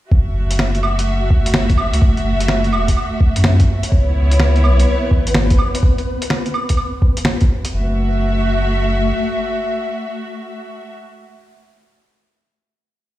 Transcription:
0.11 1.92 F#1 loud
0.11 3.89 A3 medium
0.11 3.89 F#4 medium
0.11 3.89 E5 medium
0.11 kick loud
0.51 closed hi-hat medium
0.59 snare loud
0.75 closed hi-hat soft
0.83 claves medium
0.99 closed hi-hat medium
1.30 kick loud
1.46 closed hi-hat medium
1.54 snare loud
1.70 kick loud
1.70 closed hi-hat soft
1.77 claves medium
1.93 2.01 C#2 medium
1.93 closed hi-hat medium
2.02 2.75 F#1 loud
2.02 kick loud
2.17 closed hi-hat soft
2.40 closed hi-hat medium
2.48 snare loud
2.64 closed hi-hat soft
2.73 2.96 E1 medium
2.73 claves soft
2.88 kick medium
2.88 closed hi-hat medium
2.97 claves soft
3.21 kick loud
3.36 3.67 F#2 loud
3.36 closed hi-hat medium
3.44 snare loud
3.60 kick loud
3.60 closed hi-hat soft
3.83 closed hi-hat medium
3.91 4.66 C#2 medium
3.91 7.74 B3 medium
3.91 5.81 B3 medium
3.91 5.81 E4 medium
3.91 7.74 B4 medium
3.91 5.81 C#5 medium
3.91 kick loud
4.31 closed hi-hat medium
4.40 snare loud
4.56 closed hi-hat soft
4.64 4.86 B1 medium
4.64 claves soft
4.80 closed hi-hat medium
5.11 5.58 G#1 medium
5.11 kick loud
5.27 closed hi-hat medium
5.34 snare loud
5.50 kick loud
5.50 closed hi-hat soft
5.58 claves soft
5.75 closed hi-hat medium
5.83 kick loud
5.98 closed hi-hat soft
6.22 closed hi-hat medium
6.30 snare loud
6.46 closed hi-hat soft
6.54 claves soft
6.69 kick medium
6.69 closed hi-hat medium
6.77 claves soft
7.02 kick loud
7.17 closed hi-hat medium
7.25 snare loud
7.41 kick loud
7.41 closed hi-hat soft
7.65 closed hi-hat medium
7.73 9.12 F#1 loud
7.73 10.96 A3 medium
7.73 10.95 F#4 medium
7.73 10.95 E5 medium

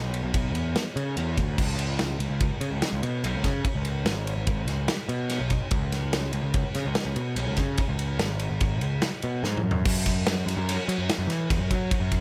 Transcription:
0.00 0.21 B1 medium
0.14 ride medium
0.23 0.33 B1 medium
0.34 0.54 B1 medium
0.34 kick loud
0.34 ride loud
0.54 0.74 E2 medium
0.54 ride medium
0.76 snare loud
0.76 ride loud
0.96 1.15 C#3 medium
0.96 ride medium
1.17 1.35 E2 medium
1.17 ride loud
1.37 1.56 D2 medium
1.37 kick medium
1.37 ride medium
1.58 2.17 C#2 medium
1.58 kick loud
1.58 crash loud
1.79 ride medium
1.99 snare loud
1.99 ride medium
2.19 2.29 C#2 medium
2.19 ride medium
2.30 2.49 C#2 medium
2.40 kick loud
2.40 ride medium
2.61 2.71 C#3 medium
2.61 ride medium
2.71 2.81 C#2 medium
2.82 snare loud
2.82 ride loud
2.93 3.02 C#2 medium
3.03 3.22 B2 loud
3.03 ride medium
3.24 3.33 B1 loud
3.24 ride loud
3.35 3.44 C#2 medium
3.44 3.64 C#3 medium
3.44 kick medium
3.44 snare soft
3.44 ride medium
3.65 kick loud
3.65 ride loud
3.75 4.04 C#2 medium
3.85 ride medium
4.05 4.35 G#1 medium
4.05 snare loud
4.05 ride loud
4.27 ride medium
4.36 4.46 G#1 medium
4.47 4.68 G#1 medium
4.47 kick loud
4.47 ride loud
4.68 4.87 C#2 medium
4.68 snare soft
4.68 ride medium
4.88 snare loud
4.88 ride loud
5.09 5.38 B2 medium
5.09 ride medium
5.30 snare soft
5.30 ride loud
5.40 5.60 B1 medium
5.50 kick medium
5.50 ride medium
5.71 6.30 C#2 medium
5.71 kick loud
5.71 ride loud
5.92 snare soft
5.92 ride medium
6.13 snare loud
6.13 ride loud
6.33 6.42 C#2 medium
6.33 ride medium
6.43 6.63 C#2 loud
6.54 kick loud
6.54 ride loud
6.75 6.85 C#3 medium
6.75 snare soft
6.75 ride medium
6.85 6.95 C#2 medium
6.95 snare loud
6.95 ride loud
7.05 7.15 C#2 medium
7.16 7.35 B2 loud
7.16 ride medium
7.36 7.46 B1 loud
7.36 ride loud
7.47 7.57 C#2 medium
7.57 7.77 C#3 medium
7.57 kick medium
7.57 snare soft
7.57 ride medium
7.78 kick loud
7.78 ride loud
7.89 8.18 C#2 medium
7.99 ride medium
8.19 8.49 G#1 medium
8.19 snare loud
8.19 ride loud
8.40 ride medium
8.51 8.60 G#1 medium
8.61 8.82 G#1 medium
8.61 kick loud
8.61 ride loud
8.81 9.01 C#2 medium
8.81 ride medium
9.02 snare loud
9.02 ride medium
9.22 9.42 B2 medium
9.22 ride medium
9.43 9.62 G#2 medium
9.43 snare medium
9.57 mid tom medium
9.64 9.82 F#2 medium
9.71 floor tom loud
9.85 10.44 F#2 loud
9.85 kick loud
9.85 crash loud
10.06 kick medium
10.06 snare soft
10.06 ride medium
10.26 snare loud
10.26 ride loud
10.46 10.56 F#2 medium
10.46 snare soft
10.46 ride medium
10.57 10.76 F#2 loud
10.69 snare soft
10.69 ride loud
10.88 10.98 F#3 medium
10.88 ride medium
10.98 11.08 F#2 medium
11.09 snare loud
11.09 ride loud
11.18 11.27 F#2 medium
11.27 11.48 E3 loud
11.27 snare soft
11.27 ride medium
11.50 11.58 E2 loud
11.50 kick loud
11.50 snare soft
11.50 ride loud
11.58 11.69 F#2 medium
11.71 11.90 F#3 loud
11.71 kick medium
11.71 ride medium
11.91 kick loud
11.91 ride loud
12.00 12.21 F#2 loud
12.12 kick medium
12.12 ride medium

